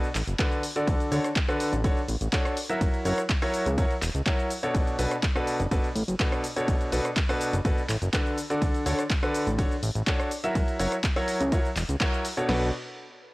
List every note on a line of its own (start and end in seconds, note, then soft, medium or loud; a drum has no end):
0.03 closed hi-hat soft
0.03 shaker soft
0.15 0.23 A1 medium
0.15 clap medium
0.15 open hi-hat loud
0.15 shaker medium
0.28 0.35 F#1 medium
0.28 closed hi-hat medium
0.28 shaker soft
0.39 0.62 D3 medium
0.39 0.62 D4 medium
0.39 0.62 F#4 medium
0.39 0.62 A4 medium
0.39 0.62 B4 medium
0.39 kick loud
0.39 clap loud
0.39 closed hi-hat medium
0.39 ride medium
0.39 shaker soft
0.52 closed hi-hat soft
0.52 shaker soft
0.63 open hi-hat loud
0.63 shaker medium
0.76 1.09 D3 medium
0.76 1.09 D4 medium
0.76 1.09 F#4 medium
0.76 1.09 A4 medium
0.76 1.09 D5 medium
0.76 closed hi-hat medium
0.76 shaker soft
0.87 0.95 D2 loud
0.87 kick loud
0.87 closed hi-hat medium
0.87 ride medium
0.87 shaker soft
1.00 closed hi-hat soft
1.00 shaker soft
1.12 1.19 D2 medium
1.12 1.27 D3 medium
1.12 1.27 D4 medium
1.12 1.27 F#4 medium
1.12 1.27 A4 medium
1.12 1.27 C#5 medium
1.12 open hi-hat loud
1.12 shaker medium
1.24 cross-stick medium
1.24 closed hi-hat medium
1.24 shaker soft
1.36 kick loud
1.36 clap loud
1.36 closed hi-hat medium
1.36 ride medium
1.36 shaker soft
1.48 1.72 D3 medium
1.48 1.72 D4 medium
1.48 1.72 F#4 medium
1.48 1.72 A4 medium
1.48 1.72 B4 medium
1.48 cross-stick medium
1.48 closed hi-hat soft
1.48 shaker soft
1.60 open hi-hat loud
1.60 shaker medium
1.73 1.86 A1 loud
1.73 closed hi-hat medium
1.73 shaker soft
1.84 1.92 D1 medium
1.84 1.99 D3 medium
1.84 1.99 D4 medium
1.84 1.99 F#4 medium
1.84 1.99 A4 medium
1.84 1.99 C#5 medium
1.84 kick loud
1.84 closed hi-hat medium
1.84 ride medium
1.84 shaker soft
1.97 closed hi-hat soft
1.97 shaker soft
2.08 2.16 A1 medium
2.08 open hi-hat loud
2.08 shaker medium
2.21 2.28 A1 medium
2.21 closed hi-hat medium
2.21 shaker soft
2.33 2.56 D4 medium
2.33 2.56 F#4 medium
2.33 2.56 A4 medium
2.33 2.56 C#5 medium
2.33 kick loud
2.33 clap loud
2.33 closed hi-hat soft
2.33 ride medium
2.33 shaker soft
2.45 cross-stick medium
2.45 closed hi-hat soft
2.45 shaker soft
2.57 open hi-hat loud
2.57 shaker medium
2.69 3.02 F#3 medium
2.69 3.02 E4 medium
2.69 3.02 F#4 medium
2.69 3.02 A#4 medium
2.69 3.02 E5 medium
2.69 closed hi-hat medium
2.69 shaker soft
2.81 2.89 F#1 loud
2.81 kick loud
2.81 closed hi-hat soft
2.81 ride medium
2.81 shaker soft
2.94 closed hi-hat soft
2.94 shaker soft
3.05 3.13 F#1 medium
3.05 3.20 F#3 medium
3.05 3.20 E4 medium
3.05 3.20 F#4 medium
3.05 3.20 A#4 medium
3.05 3.20 C#5 medium
3.05 open hi-hat loud
3.05 shaker medium
3.18 cross-stick medium
3.18 closed hi-hat medium
3.18 shaker soft
3.29 kick loud
3.29 clap loud
3.29 closed hi-hat medium
3.29 ride medium
3.29 shaker soft
3.42 3.65 F#3 medium
3.42 3.65 E4 medium
3.42 3.65 F#4 medium
3.42 3.65 A#4 medium
3.42 3.65 C#5 loud
3.42 cross-stick medium
3.42 open hi-hat medium
3.42 shaker soft
3.54 open hi-hat loud
3.54 shaker medium
3.66 3.79 C#2 loud
3.66 closed hi-hat medium
3.66 shaker soft
3.78 3.86 F#2 medium
3.78 3.93 F#3 medium
3.78 3.93 E4 medium
3.78 3.93 F#4 medium
3.78 3.93 A#4 medium
3.78 3.93 C#5 medium
3.78 kick loud
3.78 closed hi-hat medium
3.78 ride medium
3.78 shaker soft
3.91 closed hi-hat soft
3.91 shaker soft
4.02 4.10 E1 medium
4.02 clap medium
4.02 open hi-hat loud
4.02 shaker medium
4.15 4.22 C#2 medium
4.15 closed hi-hat medium
4.15 shaker soft
4.26 4.50 F#3 medium
4.26 4.50 E4 medium
4.26 4.50 F#4 medium
4.26 4.50 A#4 medium
4.26 4.50 C#5 medium
4.26 kick loud
4.26 clap loud
4.26 closed hi-hat soft
4.26 ride medium
4.26 shaker soft
4.39 closed hi-hat soft
4.39 shaker soft
4.50 open hi-hat loud
4.50 shaker medium
4.63 4.96 B2 medium
4.63 4.96 D4 medium
4.63 4.96 F#4 medium
4.63 4.96 A4 medium
4.63 4.96 C#5 medium
4.63 closed hi-hat soft
4.63 shaker soft
4.75 4.82 B1 loud
4.75 kick loud
4.75 closed hi-hat medium
4.75 ride medium
4.75 shaker soft
4.87 closed hi-hat soft
4.87 shaker soft
4.99 5.06 B1 medium
4.99 5.14 B2 medium
4.99 5.14 D4 medium
4.99 5.14 F#4 medium
4.99 5.14 A4 medium
4.99 5.14 B4 medium
4.99 open hi-hat loud
4.99 shaker medium
5.11 cross-stick medium
5.11 closed hi-hat medium
5.11 shaker soft
5.23 kick loud
5.23 clap loud
5.23 closed hi-hat soft
5.23 ride medium
5.23 shaker soft
5.36 5.59 B2 medium
5.36 5.59 D4 medium
5.36 5.59 F#4 medium
5.36 5.59 A4 medium
5.36 5.59 B4 medium
5.36 cross-stick medium
5.36 closed hi-hat soft
5.36 shaker soft
5.47 open hi-hat loud
5.47 shaker medium
5.60 5.67 F#1 medium
5.60 closed hi-hat medium
5.60 shaker soft
5.71 5.79 F#1 loud
5.71 5.86 B2 medium
5.71 5.86 D4 medium
5.71 5.86 F#4 medium
5.71 5.86 A4 medium
5.71 5.86 B4 medium
5.71 kick loud
5.71 closed hi-hat medium
5.71 ride medium
5.71 shaker soft
5.84 closed hi-hat soft
5.84 shaker soft
5.95 6.03 A1 medium
5.95 open hi-hat loud
5.95 shaker medium
6.08 6.15 F#1 medium
6.08 closed hi-hat medium
6.08 shaker soft
6.20 6.43 B2 medium
6.20 6.43 D4 medium
6.20 6.43 F#4 medium
6.20 6.43 A4 medium
6.20 6.43 B4 medium
6.20 kick loud
6.20 clap loud
6.20 closed hi-hat soft
6.20 ride medium
6.20 shaker soft
6.32 cross-stick medium
6.32 closed hi-hat soft
6.32 shaker soft
6.44 open hi-hat loud
6.44 shaker medium
6.56 6.90 B2 medium
6.56 6.90 D4 medium
6.56 6.90 F#4 medium
6.56 6.90 A4 medium
6.56 6.90 C#5 medium
6.56 closed hi-hat soft
6.56 shaker soft
6.68 6.76 B1 loud
6.68 kick loud
6.68 closed hi-hat medium
6.68 ride medium
6.68 shaker soft
6.81 closed hi-hat soft
6.81 shaker soft
6.92 7.00 B1 medium
6.92 7.07 B2 medium
6.92 7.07 D4 medium
6.92 7.07 F#4 medium
6.92 7.07 A4 medium
6.92 7.07 B4 medium
6.92 open hi-hat loud
6.92 shaker medium
7.05 cross-stick medium
7.05 closed hi-hat medium
7.05 shaker soft
7.16 kick loud
7.16 clap loud
7.16 closed hi-hat medium
7.16 ride medium
7.16 shaker soft
7.29 7.52 B2 medium
7.29 7.53 D4 medium
7.29 7.53 F#4 medium
7.29 7.53 A4 medium
7.29 7.53 B4 loud
7.29 cross-stick medium
7.29 open hi-hat medium
7.29 shaker soft
7.41 open hi-hat loud
7.41 shaker medium
7.53 7.60 F#1 loud
7.53 closed hi-hat medium
7.53 shaker soft
7.65 7.73 F#1 loud
7.65 7.80 B2 medium
7.65 7.80 D4 medium
7.65 7.80 F#4 medium
7.65 7.80 A4 medium
7.65 7.80 B4 medium
7.65 kick loud
7.65 closed hi-hat medium
7.65 ride medium
7.65 shaker soft
7.78 closed hi-hat soft
7.78 shaker soft
7.89 7.97 A1 loud
7.89 clap medium
7.89 open hi-hat loud
7.89 shaker medium
8.02 8.09 F#1 medium
8.02 closed hi-hat medium
8.02 shaker soft
8.13 8.36 D3 medium
8.13 8.36 D4 medium
8.13 8.36 F#4 medium
8.13 8.36 A4 medium
8.13 8.36 B4 medium
8.13 kick loud
8.13 clap loud
8.13 closed hi-hat medium
8.13 ride medium
8.13 shaker soft
8.26 closed hi-hat soft
8.26 shaker soft
8.38 open hi-hat loud
8.38 shaker medium
8.50 8.83 D3 medium
8.50 8.83 D4 medium
8.50 8.83 F#4 medium
8.50 8.83 A4 medium
8.50 8.83 D5 medium
8.50 closed hi-hat medium
8.50 shaker soft
8.62 8.69 D2 loud
8.62 kick loud
8.62 closed hi-hat medium
8.62 ride medium
8.62 shaker soft
8.74 closed hi-hat soft
8.74 shaker soft
8.86 8.94 D2 medium
8.86 9.01 D3 medium
8.86 9.01 D4 medium
8.86 9.01 F#4 medium
8.86 9.01 A4 medium
8.86 9.01 C#5 medium
8.86 open hi-hat loud
8.86 shaker medium
8.99 cross-stick medium
8.99 closed hi-hat medium
8.99 shaker soft
9.10 kick loud
9.10 clap loud
9.10 closed hi-hat medium
9.10 ride medium
9.10 shaker soft
9.23 9.46 D3 medium
9.23 9.46 D4 medium
9.23 9.46 F#4 medium
9.23 9.46 A4 medium
9.23 9.46 B4 loud
9.23 cross-stick medium
9.23 closed hi-hat soft
9.23 shaker soft
9.34 open hi-hat medium
9.34 shaker medium
9.47 9.60 A1 medium
9.47 closed hi-hat medium
9.47 shaker soft
9.58 9.66 D1 loud
9.58 9.73 D3 medium
9.58 9.73 D4 medium
9.58 9.73 F#4 medium
9.58 9.73 A4 medium
9.58 9.73 C#5 medium
9.58 kick loud
9.58 closed hi-hat medium
9.58 ride medium
9.58 shaker medium
9.71 closed hi-hat soft
9.71 shaker soft
9.83 9.90 A1 medium
9.83 open hi-hat loud
9.83 shaker medium
9.95 10.02 A1 medium
9.95 closed hi-hat medium
9.95 shaker soft
10.07 10.30 D4 medium
10.07 10.30 F#4 medium
10.07 10.30 A4 medium
10.07 10.30 C#5 medium
10.07 kick loud
10.07 clap loud
10.07 closed hi-hat medium
10.07 ride medium
10.07 shaker soft
10.20 cross-stick medium
10.20 closed hi-hat soft
10.20 shaker soft
10.31 open hi-hat loud
10.31 shaker medium
10.44 10.77 F#3 medium
10.44 10.77 E4 medium
10.44 10.77 F#4 medium
10.44 10.77 A#4 medium
10.44 10.77 E5 medium
10.44 closed hi-hat medium
10.44 shaker soft
10.55 10.63 F#1 loud
10.55 kick loud
10.55 closed hi-hat medium
10.55 ride medium
10.55 shaker soft
10.68 closed hi-hat soft
10.68 shaker soft
10.79 10.87 F#1 medium
10.79 10.94 F#3 medium
10.79 10.94 E4 medium
10.79 10.94 F#4 medium
10.79 10.94 A#4 medium
10.79 10.94 C#5 medium
10.79 open hi-hat loud
10.79 shaker medium
10.92 cross-stick medium
10.92 closed hi-hat medium
10.92 shaker soft
11.04 kick loud
11.04 clap loud
11.04 closed hi-hat medium
11.04 ride medium
11.04 shaker soft
11.16 11.40 F#3 loud
11.16 11.40 E4 medium
11.16 11.40 F#4 medium
11.16 11.40 A#4 medium
11.16 11.40 C#5 loud
11.16 cross-stick medium
11.16 open hi-hat medium
11.16 shaker soft
11.28 open hi-hat loud
11.28 shaker medium
11.40 11.54 C#2 loud
11.40 closed hi-hat medium
11.40 shaker soft
11.52 11.60 F#2 loud
11.52 11.67 F#3 medium
11.52 11.67 E4 medium
11.52 11.67 F#4 medium
11.52 11.67 A#4 medium
11.52 11.67 C#5 medium
11.52 kick loud
11.52 closed hi-hat medium
11.52 ride medium
11.52 shaker soft
11.65 closed hi-hat soft
11.65 shaker soft
11.76 11.84 E1 medium
11.76 clap medium
11.76 open hi-hat loud
11.76 shaker medium
11.89 11.96 C#2 medium
11.89 closed hi-hat medium
11.89 shaker soft
12.00 12.24 F#3 medium
12.00 12.24 E4 medium
12.00 12.24 F#4 medium
12.00 12.24 A#4 medium
12.00 12.24 C#5 medium
12.00 kick loud
12.00 clap loud
12.00 closed hi-hat medium
12.00 ride medium
12.00 shaker soft
12.13 closed hi-hat soft
12.13 shaker soft
12.25 open hi-hat loud
12.25 shaker medium
12.37 12.70 B2 medium
12.37 12.47 D4 medium
12.37 12.47 F#4 medium
12.37 12.47 A4 medium
12.37 12.70 C#5 medium
12.37 closed hi-hat medium
12.37 shaker soft
12.49 12.71 B1 loud
12.49 12.67 D4 medium
12.49 12.67 F#4 medium
12.49 12.67 A4 medium
12.49 12.67 B4 medium
12.49 snare loud
12.49 crash medium